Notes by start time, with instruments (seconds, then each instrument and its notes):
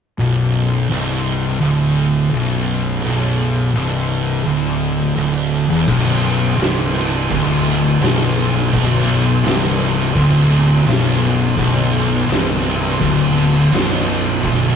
0.19 fingered electric bass B0, distorted electric guitar B1
0.89 fingered electric bass C1, distorted electric guitar C2
1.60 fingered electric bass D1, distorted electric guitar D2
2.30 fingered electric bass B0, distorted electric guitar B1
3.04 fingered electric bass B0, distorted electric guitar B1
3.74 fingered electric bass C1, distorted electric guitar C2
4.44 fingered electric bass D1, distorted electric guitar D2
5.16 fingered electric bass D1, distorted electric guitar D2
5.69 fingered electric bass E1, distorted electric guitar E2
5.87 fingered electric bass B0, distorted electric guitar B1, string machine B3 F#4 B4, kick, crash
6.24 crash
6.59 fingered electric bass C1, distorted electric guitar C2, snare, crash
6.95 crash
7.30 fingered electric bass D1, distorted electric guitar D2, kick, crash
7.67 crash
8.01 fingered electric bass B0, distorted electric guitar B1, snare, crash
8.38 crash
8.73 fingered electric bass B0, distorted electric guitar B1, kick, crash
8.94 snare
9.09 crash
9.43 fingered electric bass C1, distorted electric guitar C2, snare, crash
9.80 crash
10.15 fingered electric bass D1, distorted electric guitar D2, kick, crash
10.51 crash
10.86 fingered electric bass B0, distorted electric guitar B1, snare, crash
11.22 crash
11.42 snare
11.57 fingered electric bass B0, distorted electric guitar B1, kick, crash
11.78 snare
11.94 crash
12.29 fingered electric bass C1, distorted electric guitar C2, snare, crash
12.66 crash
13.01 fingered electric bass D1, distorted electric guitar D2, kick, crash
13.38 crash
13.71 fingered electric bass B0, distorted electric guitar B1, snare, crash
14.08 crash
14.43 fingered electric bass B0, distorted electric guitar B1, kick, crash